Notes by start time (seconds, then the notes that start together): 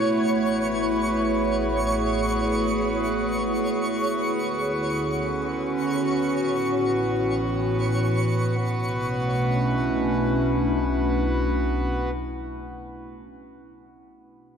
Already playing: A1 A3 B3 E4 F#4 C#5 C#6
0.35 G#4
4.07 D2 D3
4.53 C#4
4.60 F#4
6.30 A1 A2
6.65 E3
8.56 B1 B3 F#4
8.60 B2
8.79 A3
8.92 C#4
9.06 D4
9.23 E4